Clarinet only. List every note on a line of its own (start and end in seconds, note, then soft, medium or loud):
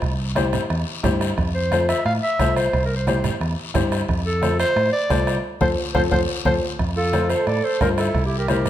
1.55 1.86 C5 medium
1.89 2.04 E5 medium
2.06 2.13 F5 medium
2.23 2.54 E5 loud
2.57 2.83 C5 medium
2.85 2.95 A#4 medium
2.96 3.06 C5 medium
3.08 3.39 C5 medium
4.26 4.57 A4 medium
4.60 4.91 C5 loud
4.93 5.40 D5 loud
5.61 5.69 C5 medium
5.94 6.03 C5 medium
6.12 6.20 C5 medium
6.46 6.54 C5 medium
6.97 7.31 A4 medium
7.30 7.47 C5 medium
7.47 7.66 D5 medium
7.64 7.81 C5 medium
7.82 7.89 A#4 medium
7.98 8.24 A4 medium
8.26 8.37 G4 medium
8.38 8.48 A#4 medium
8.49 8.70 A#4 medium